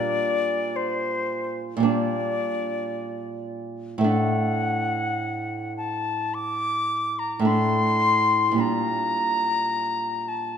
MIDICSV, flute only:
0, 0, Header, 1, 2, 480
1, 0, Start_track
1, 0, Key_signature, -2, "minor"
1, 0, Tempo, 1104972
1, 1764, Time_signature, 4, 2, 24, 8
1, 1764, Tempo, 1145038
1, 2724, Tempo, 1119403
1, 4537, End_track
2, 0, Start_track
2, 0, Title_t, "Flute"
2, 0, Program_c, 0, 73
2, 0, Note_on_c, 0, 74, 107
2, 331, Note_on_c, 0, 72, 99
2, 337, Note_off_c, 0, 74, 0
2, 690, Note_off_c, 0, 72, 0
2, 808, Note_on_c, 0, 74, 96
2, 1506, Note_off_c, 0, 74, 0
2, 1768, Note_on_c, 0, 78, 108
2, 2466, Note_off_c, 0, 78, 0
2, 2482, Note_on_c, 0, 81, 85
2, 2720, Note_on_c, 0, 86, 101
2, 2727, Note_off_c, 0, 81, 0
2, 3084, Note_on_c, 0, 82, 88
2, 3090, Note_off_c, 0, 86, 0
2, 3204, Note_on_c, 0, 84, 102
2, 3210, Note_off_c, 0, 82, 0
2, 3689, Note_on_c, 0, 82, 100
2, 3696, Note_off_c, 0, 84, 0
2, 4410, Note_on_c, 0, 81, 77
2, 4416, Note_off_c, 0, 82, 0
2, 4537, Note_off_c, 0, 81, 0
2, 4537, End_track
0, 0, End_of_file